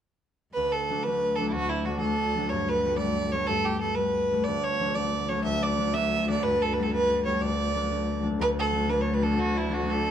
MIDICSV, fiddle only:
0, 0, Header, 1, 2, 480
1, 0, Start_track
1, 0, Key_signature, 2, "major"
1, 0, Tempo, 326975
1, 812, Time_signature, 6, 3, 24, 8
1, 14839, End_track
2, 0, Start_track
2, 0, Title_t, "Fiddle"
2, 0, Program_c, 0, 110
2, 790, Note_on_c, 0, 71, 84
2, 1065, Note_on_c, 0, 69, 76
2, 1087, Note_off_c, 0, 71, 0
2, 1520, Note_on_c, 0, 71, 85
2, 1542, Note_off_c, 0, 69, 0
2, 1993, Note_on_c, 0, 69, 75
2, 2015, Note_off_c, 0, 71, 0
2, 2178, Note_off_c, 0, 69, 0
2, 2189, Note_on_c, 0, 64, 57
2, 2239, Note_on_c, 0, 66, 91
2, 2261, Note_off_c, 0, 64, 0
2, 2487, Note_on_c, 0, 64, 76
2, 2509, Note_off_c, 0, 66, 0
2, 2718, Note_on_c, 0, 66, 68
2, 2740, Note_off_c, 0, 64, 0
2, 2926, Note_off_c, 0, 66, 0
2, 2935, Note_on_c, 0, 69, 83
2, 3664, Note_on_c, 0, 73, 82
2, 3686, Note_off_c, 0, 69, 0
2, 3950, Note_on_c, 0, 71, 93
2, 3972, Note_off_c, 0, 73, 0
2, 4371, Note_off_c, 0, 71, 0
2, 4380, Note_on_c, 0, 74, 88
2, 4877, Note_on_c, 0, 73, 81
2, 4899, Note_off_c, 0, 74, 0
2, 5095, Note_on_c, 0, 69, 94
2, 5117, Note_off_c, 0, 73, 0
2, 5363, Note_on_c, 0, 67, 82
2, 5385, Note_off_c, 0, 69, 0
2, 5583, Note_off_c, 0, 67, 0
2, 5592, Note_on_c, 0, 69, 76
2, 5803, Note_on_c, 0, 71, 86
2, 5825, Note_off_c, 0, 69, 0
2, 6517, Note_on_c, 0, 74, 88
2, 6539, Note_off_c, 0, 71, 0
2, 6804, Note_on_c, 0, 73, 98
2, 6826, Note_off_c, 0, 74, 0
2, 7266, Note_on_c, 0, 74, 89
2, 7288, Note_off_c, 0, 73, 0
2, 7765, Note_on_c, 0, 73, 76
2, 7787, Note_off_c, 0, 74, 0
2, 7977, Note_off_c, 0, 73, 0
2, 7986, Note_on_c, 0, 76, 93
2, 8265, Note_on_c, 0, 74, 89
2, 8287, Note_off_c, 0, 76, 0
2, 8717, Note_on_c, 0, 76, 95
2, 8739, Note_off_c, 0, 74, 0
2, 9220, Note_off_c, 0, 76, 0
2, 9247, Note_on_c, 0, 74, 84
2, 9441, Note_on_c, 0, 71, 97
2, 9463, Note_off_c, 0, 74, 0
2, 9721, Note_on_c, 0, 69, 84
2, 9743, Note_off_c, 0, 71, 0
2, 9887, Note_on_c, 0, 71, 77
2, 9909, Note_off_c, 0, 69, 0
2, 10024, Note_on_c, 0, 69, 86
2, 10046, Note_off_c, 0, 71, 0
2, 10168, Note_off_c, 0, 69, 0
2, 10177, Note_on_c, 0, 71, 96
2, 10637, Note_off_c, 0, 71, 0
2, 10649, Note_on_c, 0, 73, 76
2, 10885, Note_on_c, 0, 74, 94
2, 10907, Note_off_c, 0, 73, 0
2, 12106, Note_off_c, 0, 74, 0
2, 12354, Note_on_c, 0, 71, 96
2, 12471, Note_off_c, 0, 71, 0
2, 12613, Note_on_c, 0, 69, 87
2, 13059, Note_on_c, 0, 71, 78
2, 13081, Note_off_c, 0, 69, 0
2, 13233, Note_on_c, 0, 73, 65
2, 13255, Note_off_c, 0, 71, 0
2, 13414, Note_on_c, 0, 71, 67
2, 13436, Note_off_c, 0, 73, 0
2, 13551, Note_on_c, 0, 69, 68
2, 13573, Note_off_c, 0, 71, 0
2, 13796, Note_on_c, 0, 66, 81
2, 13818, Note_off_c, 0, 69, 0
2, 14053, Note_on_c, 0, 64, 73
2, 14075, Note_off_c, 0, 66, 0
2, 14297, Note_on_c, 0, 66, 76
2, 14319, Note_off_c, 0, 64, 0
2, 14531, Note_on_c, 0, 69, 87
2, 14553, Note_off_c, 0, 66, 0
2, 14839, Note_off_c, 0, 69, 0
2, 14839, End_track
0, 0, End_of_file